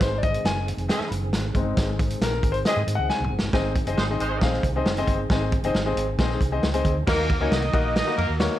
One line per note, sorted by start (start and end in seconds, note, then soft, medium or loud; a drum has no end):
0.00 0.37 G#1 loud
0.00 3.50 D#3 medium
0.00 0.41 G#3 medium
0.00 0.42 C4 soft
0.00 3.50 C4 medium
0.00 0.42 D#4 medium
0.00 3.50 G#4 medium
0.00 0.17 C5 medium
0.00 kick loud
0.00 snare loud
0.00 closed hi-hat loud
0.18 0.23 D5 medium
0.23 0.46 D#5 loud
0.23 kick loud
0.23 closed hi-hat medium
0.34 closed hi-hat medium
0.44 0.71 F#1 medium
0.44 0.66 G#5 medium
0.44 snare loud
0.44 closed hi-hat medium
0.68 closed hi-hat medium
0.77 0.87 F1 medium
0.77 closed hi-hat soft
0.89 1.08 C4 loud
0.89 1.08 G#4 loud
0.89 1.08 D#5 loud
0.89 snare loud
0.89 closed hi-hat medium
1.00 muted fingered electric bass stroke soft
1.00 snare soft
1.11 1.33 F#1 medium
1.11 closed hi-hat medium
1.33 1.51 G#1 medium
1.33 snare loud
1.33 closed hi-hat medium
1.55 1.73 G1 medium
1.55 2.18 G#3 medium
1.55 2.18 C4 medium
1.55 2.19 D#4 medium
1.55 kick medium
1.55 closed hi-hat medium
1.77 2.13 G#1 loud
1.77 kick loud
1.77 snare loud
1.77 closed hi-hat medium
1.99 kick loud
1.99 closed hi-hat medium
2.10 closed hi-hat medium
2.21 2.39 A#1 medium
2.21 2.53 A#4 medium
2.21 snare loud
2.21 closed hi-hat medium
2.43 2.61 G#1 medium
2.43 kick loud
2.43 closed hi-hat medium
2.52 2.57 C5 medium
2.52 closed hi-hat soft
2.65 2.80 C4 loud
2.65 2.80 G#4 loud
2.65 2.81 D#5 loud
2.65 2.97 D#5 loud
2.65 snare loud
2.65 closed hi-hat loud
2.77 2.86 G#2 loud
2.87 2.96 G#2 medium
2.87 closed hi-hat medium
2.95 3.08 C#2 medium
2.95 3.10 F#5 medium
3.09 3.30 G#5 medium
3.09 snare medium
3.20 3.29 C2 medium
3.24 mid tom medium
3.30 3.40 F#1 medium
3.39 3.51 G1 medium
3.39 snare loud
3.53 3.80 G#1 loud
3.53 7.03 D#3 medium
3.53 7.03 C4 medium
3.53 3.74 C4 medium
3.53 3.74 D#4 medium
3.53 7.03 G#4 medium
3.53 3.74 G#4 medium
3.53 3.74 C5 medium
3.53 3.74 D#5 loud
3.53 kick loud
3.53 snare loud
3.75 kick loud
3.75 closed hi-hat medium
3.86 3.95 F#1 medium
3.86 4.00 C4 medium
3.86 4.00 D#4 medium
3.86 4.00 G#4 medium
3.86 4.01 C5 medium
3.86 4.00 D#5 loud
3.86 closed hi-hat medium
3.98 4.16 G#1 loud
3.98 4.05 G#3 medium
3.98 4.06 D#4 medium
3.98 4.05 C5 loud
3.98 snare loud
4.10 4.29 C4 medium
4.10 4.29 D#4 medium
4.10 4.30 G#4 medium
4.10 4.30 C5 medium
4.10 4.30 D#5 medium
4.20 4.38 G#1 medium
4.20 4.39 G#3 loud
4.20 4.39 D#4 medium
4.20 4.39 C5 loud
4.20 closed hi-hat medium
4.41 4.60 A#1 medium
4.41 4.62 C4 medium
4.41 4.62 D#4 medium
4.41 4.62 G#4 medium
4.41 4.62 C5 medium
4.41 4.62 F5 loud
4.41 kick loud
4.41 snare loud
4.53 snare soft
4.63 4.81 C2 medium
4.63 kick loud
4.63 closed hi-hat medium
4.76 4.89 C4 medium
4.76 4.89 D#4 medium
4.76 4.89 G#4 medium
4.76 4.89 C5 medium
4.76 4.89 D#5 medium
4.86 5.04 F#1 medium
4.86 snare loud
4.97 5.17 C4 loud
4.97 5.18 D#4 medium
4.97 5.18 G#4 medium
4.97 5.18 C5 medium
4.97 5.18 D#5 loud
4.97 closed hi-hat soft
5.07 5.26 G1 medium
5.07 kick medium
5.07 closed hi-hat medium
5.30 5.57 G#1 loud
5.30 5.50 C4 medium
5.30 5.50 D#4 medium
5.30 5.51 G#4 medium
5.30 5.51 C5 medium
5.30 5.51 D#5 medium
5.30 kick loud
5.30 snare loud
5.52 kick loud
5.52 closed hi-hat medium
5.62 5.72 F#1 medium
5.62 5.77 C4 loud
5.62 5.77 D#4 medium
5.62 5.77 G#4 medium
5.62 5.77 C5 medium
5.62 5.77 D#5 loud
5.62 closed hi-hat medium
5.74 5.92 G#1 medium
5.74 snare loud
5.86 6.06 C4 medium
5.86 6.06 D#4 medium
5.86 6.06 G#4 medium
5.86 6.05 C5 medium
5.86 6.06 D#5 medium
5.96 6.14 G#1 medium
5.96 closed hi-hat medium
6.19 6.37 A#1 loud
6.19 6.38 C4 loud
6.19 6.39 D#4 medium
6.19 6.39 G#4 medium
6.19 6.39 C5 medium
6.19 6.39 D#5 loud
6.19 kick medium
6.19 snare loud
6.30 snare soft
6.41 6.59 C2 medium
6.41 kick loud
6.41 closed hi-hat medium
6.52 6.65 C4 medium
6.52 6.65 D#4 medium
6.52 6.65 G#4 medium
6.52 6.65 C5 medium
6.52 6.65 D#5 medium
6.63 6.81 C#2 medium
6.63 snare loud
6.74 6.93 C4 loud
6.74 6.94 D#4 medium
6.74 6.94 G#4 medium
6.74 6.94 C5 medium
6.74 6.94 D#5 loud
6.74 closed hi-hat medium
6.85 7.03 D2 medium
6.85 kick medium
6.85 closed hi-hat medium
7.07 7.34 D#2 loud
7.07 8.59 D#3 medium
7.07 7.27 A#3 medium
7.07 7.38 A#3 loud
7.07 8.59 A#3 medium
7.07 7.27 D#4 medium
7.07 7.27 F#4 medium
7.07 8.59 F#4 medium
7.07 7.27 A#4 medium
7.07 7.38 A#4 loud
7.07 7.27 D#5 medium
7.07 kick loud
7.07 snare loud
7.07 crash loud
7.30 kick loud
7.30 ride medium
7.40 7.49 C#2 loud
7.40 7.60 A#3 medium
7.40 7.49 C#4 medium
7.40 7.60 D#4 medium
7.40 7.60 F#4 medium
7.40 7.60 A#4 medium
7.40 7.49 C#5 medium
7.40 7.60 D#5 loud
7.51 7.69 C2 loud
7.51 7.93 D#4 medium
7.51 7.93 D#5 loud
7.51 snare loud
7.51 ride medium
7.62 ride soft
7.73 8.00 A#1 medium
7.73 7.93 A#3 loud
7.73 7.93 D#4 medium
7.73 7.93 F#4 medium
7.73 7.93 A#4 medium
7.73 7.93 D#5 loud
7.73 kick loud
7.73 ride medium
7.96 8.14 D#4 loud
7.96 8.14 D#5 loud
7.96 snare loud
7.96 ride medium
8.07 8.26 A#3 medium
8.07 8.26 D#4 medium
8.07 8.26 F#4 medium
8.07 8.26 A#4 medium
8.07 8.27 D#5 medium
8.07 snare soft
8.17 8.27 F2 loud
8.17 8.35 A#3 loud
8.17 8.35 A#4 loud
8.17 ride medium
8.29 8.47 D#2 medium
8.40 8.59 A#3 medium
8.40 8.59 D#4 medium
8.40 8.59 F#4 medium
8.40 8.59 A#4 medium
8.40 8.59 C#5 medium
8.40 snare loud
8.40 ride medium